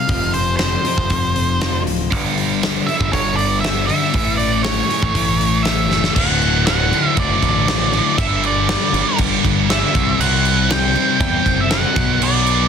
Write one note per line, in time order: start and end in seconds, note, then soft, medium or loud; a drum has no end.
0.00 0.31 F5 loud
0.08 0.76 F1 medium
0.08 0.83 F2 medium
0.08 0.33 F2 medium
0.08 0.33 C3 medium
0.08 0.84 C3 medium
0.08 0.33 F3 medium
0.08 0.83 F3 loud
0.08 kick loud
0.08 open hi-hat medium
0.34 0.57 F2 medium
0.34 0.57 C3 medium
0.34 0.56 C5 medium
0.34 open hi-hat medium
0.57 0.83 F2 medium
0.57 0.83 C3 medium
0.57 1.81 C5 medium
0.57 snare loud
0.57 open hi-hat medium
0.84 1.09 F2 medium
0.84 1.09 C3 loud
0.84 2.11 C3 medium
0.84 2.10 F3 medium
0.84 1.09 F3 medium
0.84 open hi-hat medium
0.88 2.10 F2 medium
0.97 1.07 F1 loud
0.97 kick medium
1.10 1.86 F1 loud
1.10 1.33 F2 medium
1.10 1.33 C3 medium
1.10 kick loud
1.10 open hi-hat medium
1.36 1.58 F2 medium
1.36 1.59 C3 medium
1.36 open hi-hat medium
1.61 1.85 F2 loud
1.61 1.85 C3 medium
1.61 1.85 F3 medium
1.61 snare loud
1.61 open hi-hat medium
1.86 2.12 D1 medium
1.86 2.09 F2 medium
1.86 2.09 C3 medium
1.86 open hi-hat medium
2.10 2.79 G1 medium
2.10 2.85 G2 loud
2.10 2.86 D3 medium
2.10 2.85 G3 loud
2.10 kick loud
2.10 open hi-hat medium
2.38 open hi-hat medium
2.63 snare loud
2.63 open hi-hat medium
2.86 4.12 G2 medium
2.86 4.13 D3 medium
2.86 4.12 G3 loud
2.86 3.12 E5 loud
2.86 open hi-hat medium
3.00 3.10 G1 medium
3.00 kick loud
3.13 3.90 G1 loud
3.13 3.36 C#5 loud
3.13 kick loud
3.13 open hi-hat medium
3.36 3.60 D5 medium
3.36 open hi-hat soft
3.61 3.85 E5 loud
3.61 open hi-hat medium
3.65 snare loud
3.87 4.13 D3 medium
3.87 4.12 G3 medium
3.87 4.35 E5 loud
3.87 open hi-hat medium
3.92 4.12 G2 medium
4.13 4.81 A1 loud
4.13 4.88 A2 medium
4.13 4.89 E3 loud
4.13 4.87 A3 medium
4.13 kick loud
4.13 open hi-hat medium
4.37 4.63 D5 medium
4.37 open hi-hat soft
4.63 5.86 C#5 medium
4.63 snare loud
4.63 open hi-hat medium
4.88 6.14 A2 medium
4.88 6.15 E3 medium
4.88 6.14 A3 loud
4.88 open hi-hat medium
5.02 5.12 A1 loud
5.02 kick loud
5.15 5.89 A1 loud
5.15 kick loud
5.15 open hi-hat medium
5.41 open hi-hat medium
5.63 6.15 E5 loud
5.63 snare loud
5.63 open hi-hat medium
5.89 6.09 F#1 medium
5.89 6.15 E3 medium
5.89 6.14 A3 medium
5.89 snare medium
5.94 6.14 A2 medium
6.04 snare medium
6.15 6.92 D1 medium
6.15 6.65 D2 loud
6.15 6.65 A2 loud
6.15 6.66 D3 loud
6.15 6.63 F#5 loud
6.15 kick loud
6.15 crash loud
6.15 crash medium
6.42 crash medium
6.66 6.91 D2 medium
6.66 6.91 A2 medium
6.66 6.92 D3 medium
6.66 7.19 F#5 loud
6.66 snare loud
6.66 crash medium
6.92 7.15 D2 medium
6.92 7.17 A2 loud
6.92 7.17 D3 loud
6.92 crash medium
7.16 7.36 F#1 loud
7.16 7.67 D2 loud
7.16 7.67 A2 loud
7.16 7.68 D3 loud
7.16 8.15 D5 loud
7.16 kick loud
7.16 crash medium
7.42 7.99 A1 medium
7.42 kick medium
7.42 crash medium
7.68 7.92 D2 medium
7.68 7.93 A2 medium
7.68 7.94 D3 loud
7.68 snare loud
7.68 crash medium
7.93 8.16 D2 medium
7.93 8.17 A2 loud
7.93 8.17 D3 loud
7.93 crash medium
8.17 8.75 G1 medium
8.17 8.67 G2 loud
8.17 8.68 D3 loud
8.17 8.69 G3 loud
8.17 8.44 E5 loud
8.17 kick loud
8.17 crash medium
8.44 9.16 D5 medium
8.44 crash medium
8.69 8.93 G2 medium
8.69 8.93 D3 medium
8.69 8.94 G3 medium
8.69 snare loud
8.69 crash medium
8.93 9.03 G1 loud
8.93 9.17 G2 loud
8.93 9.17 D3 medium
8.93 9.18 G3 medium
8.93 crash medium
9.18 9.38 G1 loud
9.18 9.68 G2 loud
9.18 9.68 D3 loud
9.18 9.69 G3 loud
9.18 kick loud
9.18 crash medium
9.44 9.82 G1 medium
9.44 kick medium
9.44 crash medium
9.69 9.93 G2 medium
9.69 9.93 D3 medium
9.69 9.93 G3 loud
9.69 10.21 E5 medium
9.69 snare loud
9.69 crash medium
9.95 10.14 C2 medium
9.95 10.17 C3 medium
9.95 10.18 G3 loud
9.95 10.19 C4 loud
9.95 kick loud
9.95 crash medium
10.18 10.96 C2 medium
10.18 10.69 C3 loud
10.18 10.69 G3 loud
10.18 10.70 C4 loud
10.18 10.67 F#5 loud
10.18 crash medium
10.45 crash medium
10.70 10.94 C3 medium
10.70 10.94 G3 medium
10.70 10.95 C4 medium
10.70 11.18 G5 loud
10.70 snare loud
10.70 crash medium
10.95 11.19 C3 loud
10.95 11.20 G3 medium
10.95 11.20 C4 loud
10.95 crash medium
11.20 11.39 E2 loud
11.20 11.69 C3 loud
11.20 11.70 G3 loud
11.20 11.71 C4 loud
11.20 11.59 G5 loud
11.20 kick loud
11.20 crash medium
11.46 11.84 F#1 medium
11.46 kick medium
11.46 crash medium
11.60 11.72 E5 loud
11.70 11.94 C3 loud
11.70 11.95 G3 medium
11.70 11.95 C4 loud
11.70 12.23 F#5 loud
11.70 snare loud
11.70 crash medium
11.96 12.68 B1 medium
11.96 12.19 B2 medium
11.96 12.21 F#3 loud
11.96 12.21 B3 loud
11.96 kick loud
11.96 crash medium
12.20 12.68 B2 loud
12.20 12.68 F#3 loud
12.20 12.68 B3 loud
12.20 12.68 D5 medium
12.20 crash medium
12.47 crash medium